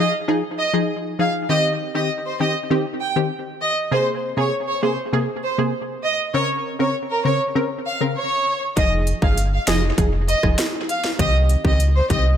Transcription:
Already playing: synth stab F3 D#4
0.00 synth stab G#4
0.28 synth stab F3 D#4 G#4
0.59 violin section D#5
0.73 synth stab F3 D#4 G#4
1.19 synth stab F3 D#4 G#4, violin section F5
1.49 synth stab D#3 C4 G4, violin section D#5
1.95 synth stab D#3 C4 G4, violin section D#5
2.25 violin section C5
2.40 synth stab D#3 C4 G4, violin section D#5
2.70 synth stab D#3 C4 G4
3.01 violin section G5
3.16 synth stab D#3 C4 G4
3.62 violin section D#5
3.91 synth stab C3 A#3 G#4, violin section C5
4.37 synth stab C3 A#3 G#4, violin section C#5
4.68 violin section C#5
4.82 synth stab C3 A#3 G#4, violin section C5
5.13 synth stab C3 A#3 G#4
5.44 violin section C5
5.58 synth stab C3 A#3 G#4
6.04 violin section D#5
6.34 synth stab C#3 C4 A#4, violin section C#5
6.79 synth stab C#3 C4 A#4, violin section C#5
7.10 violin section A#4
7.25 synth stab C#3 C4 A#4, violin section C#5
7.55 synth stab C#3 C4 A#4
7.86 violin section F5
8.01 synth stab C#3 C4 A#4
8.16 violin section C#5
8.76 sub bass F1, synth stab F3 D#4 G#4, violin section D#5, kick, closed hi-hat
9.07 closed hi-hat
9.22 sub bass G1, synth stab F3 D#4 G#4, violin section F5, kick
9.37 closed hi-hat
9.53 violin section F5
9.67 sub bass F1, synth stab F3 D#4 G#4, violin section D#5, snare, closed hi-hat
9.98 sub bass F1, synth stab F3 D#4 G#4, kick, closed hi-hat
10.28 violin section D#5, closed hi-hat
10.43 sub bass F1, synth stab F3 D#4 G#4, kick, cross-stick
10.59 snare, closed hi-hat
10.89 violin section F5, closed hi-hat
11.04 snare
11.19 sub bass C2, synth stab D#3 C4 G4, violin section D#5, kick, closed hi-hat
11.49 closed hi-hat
11.64 sub bass C#2, synth stab D#3 C4 G4, violin section D#5, kick
11.80 closed hi-hat
11.95 violin section C5
12.10 sub bass C2, synth stab D#3 C4 G4, violin section D#5, kick, closed hi-hat

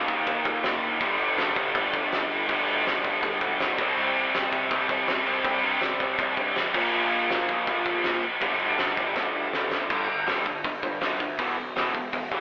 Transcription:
Already playing: overdriven electric guitar D#3 A#3 D#4
0.08 picked electric bass D#2, kick, crash
0.27 picked electric bass D#2, kick, crash
0.45 picked electric bass A#2, kick, crash
0.64 picked electric bass C2, snare, crash
0.82 picked electric bass A#1, crash
1.00 picked electric bass G1, overdriven electric guitar G2 D3 G3, kick, crash
1.20 crash
1.37 picked electric bass G2, snare, crash
1.56 picked electric bass G1, kick, crash
1.75 picked electric bass G1, kick, crash
1.93 picked electric bass F1, kick, crash
2.11 picked electric bass G1, snare, crash
2.30 picked electric bass G1, crash
2.47 picked electric bass G1, overdriven electric guitar G2 D3 G3, kick, crash
2.66 picked electric bass D2, crash
2.85 picked electric bass G1, snare, crash
3.04 picked electric bass G1, kick, crash
3.22 picked electric bass G1, kick, crash
3.41 picked electric bass D2, kick, crash
3.59 picked electric bass B1, snare, crash
3.77 picked electric bass C2, overdriven electric guitar C3 G3 C4, kick, crash
3.96 picked electric bass C2, crash
4.16 crash
4.33 picked electric bass C3, snare, crash
4.53 picked electric bass C2, kick, crash
4.71 picked electric bass C2, kick, crash
4.89 picked electric bass A1, kick, crash
5.07 picked electric bass C2, snare, crash
5.25 picked electric bass C2, overdriven electric guitar C3 G3 C4, crash
5.44 picked electric bass C2, kick, crash
5.63 picked electric bass G2, crash
5.81 picked electric bass C2, snare, crash
6.00 picked electric bass C2, kick, crash
6.18 picked electric bass C2, kick, crash
6.37 picked electric bass G2, kick, crash
6.56 picked electric bass A1, snare, crash
6.74 picked electric bass A#1, overdriven electric guitar A#2 F3 A#3, kick, crash
6.91 picked electric bass A#1, crash
7.11 crash
7.29 picked electric bass A#2, snare, crash
7.49 picked electric bass A#1, kick, crash
7.67 picked electric bass A#1, kick, crash
7.85 picked electric bass G1, kick, crash
8.04 picked electric bass A#1, snare, crash
8.23 picked electric bass A#1, crash
8.41 picked electric bass G1, overdriven electric guitar G2 D3 G3, kick, crash
8.59 picked electric bass D2, crash
8.78 picked electric bass G1, snare, crash
8.97 picked electric bass G1, kick, crash
9.16 picked electric bass G1, kick, snare
9.34 picked electric bass D2
9.53 picked electric bass F1, snare
9.71 picked electric bass D2, snare
9.90 picked electric bass G1, overdriven electric guitar G2 D3 G3, kick, crash
10.09 picked electric bass G1, overdriven electric guitar G2 D3
10.27 picked electric bass G1, overdriven electric guitar G2 D3 G3, snare, open hi-hat
10.45 picked electric bass G1, overdriven electric guitar G2 D3, kick
10.64 picked electric bass G1, overdriven electric guitar G2 D3, kick, open hi-hat
10.83 picked electric bass G2, overdriven electric guitar G2 D3, kick
11.01 picked electric bass G1, overdriven electric guitar G2 D3 G3, snare, open hi-hat
11.20 picked electric bass D2, overdriven electric guitar G2 D3, kick
11.38 picked electric bass E1, overdriven electric guitar E2 B2 E3, kick, open hi-hat
11.57 picked electric bass B1, overdriven electric guitar E2 B2
11.76 picked electric bass E1, overdriven electric guitar E2 B2 E3, snare, open hi-hat
11.94 picked electric bass E1, overdriven electric guitar E2 B2, kick
12.13 picked electric bass E1, overdriven electric guitar E2 B2, kick, open hi-hat
12.32 picked electric bass G1, overdriven electric guitar E2 B2 E3, kick

